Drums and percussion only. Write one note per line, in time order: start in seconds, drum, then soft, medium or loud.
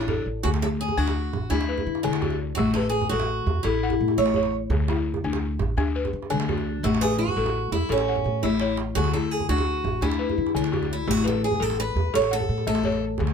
0.08 djembe tone medium
0.08 djembe bass medium
0.45 djembe bass medium
0.54 djembe slap medium
0.63 djembe tone medium
0.72 djembe slap soft
0.89 djembe bass medium
0.98 djembe slap soft
1.07 djembe slap medium
1.07 djembe tone medium
1.33 djembe slap soft
1.33 djembe bass medium
1.52 djembe tone medium
1.61 djembe slap soft
1.78 djembe bass medium
1.87 djembe slap soft
1.95 djembe tone medium
2.13 djembe slap medium
2.22 djembe bass medium
2.30 djembe tone medium
2.57 djembe bass medium
2.75 djembe tone medium
2.84 djembe slap soft
3.01 djembe bass medium
3.11 djembe slap soft
3.20 djembe slap medium
3.20 djembe tone medium
3.47 djembe slap soft
3.47 djembe bass medium
3.64 djembe tone medium
3.90 djembe bass medium
3.99 djembe slap soft
4.08 djembe tone medium
4.26 djembe slap medium
4.34 djembe bass medium
4.43 djembe tone medium
4.70 djembe bass medium
4.88 djembe tone medium
4.97 djembe slap soft
5.14 djembe bass medium
5.24 djembe slap soft
5.33 djembe slap medium
5.33 djembe tone medium
5.59 djembe slap soft
5.59 djembe bass medium
5.78 djembe tone medium
6.05 djembe bass medium
6.13 djembe slap soft
6.22 djembe tone medium
6.40 djembe slap medium
6.49 djembe bass medium
6.58 djembe tone medium
6.85 djembe bass medium
6.94 djembe slap medium
7.02 djembe tone medium
7.10 djembe slap soft
7.28 djembe bass medium
7.46 djembe slap soft
7.46 djembe tone soft
7.72 djembe bass medium
7.81 djembe slap soft
7.89 djembe tone medium
7.98 djembe slap medium
8.08 djembe slap soft
8.16 djembe slap soft
8.16 djembe bass medium
8.24 djembe bass soft
8.43 djembe bass soft
8.60 djembe slap soft
8.77 djembe slap medium
8.95 djembe bass medium
9.04 djembe slap soft
9.13 djembe tone medium
9.22 djembe slap soft
9.40 djembe bass medium
9.49 djembe slap soft
9.58 djembe slap soft
9.58 djembe tone soft
9.85 djembe slap soft
9.85 djembe bass medium
10.03 djembe tone medium
10.12 djembe slap medium
10.29 djembe bass medium
10.39 djembe slap soft
10.46 djembe tone medium
10.64 djembe slap medium
10.73 djembe bass medium
10.83 djembe tone medium
11.08 djembe bass medium
11.17 djembe slap soft
11.25 djembe tone medium
11.34 djembe slap soft
11.51 djembe bass medium
11.61 djembe slap soft
11.70 djembe slap soft
11.70 djembe tone medium
11.97 djembe slap soft
11.97 djembe bass medium
12.14 djembe tone medium
12.22 djembe slap medium
12.40 djembe bass medium
12.49 djembe slap soft
12.58 djembe tone medium
12.75 djembe slap soft
12.83 djembe bass medium
12.92 djembe tone medium
13.18 djembe bass medium
13.27 djembe slap soft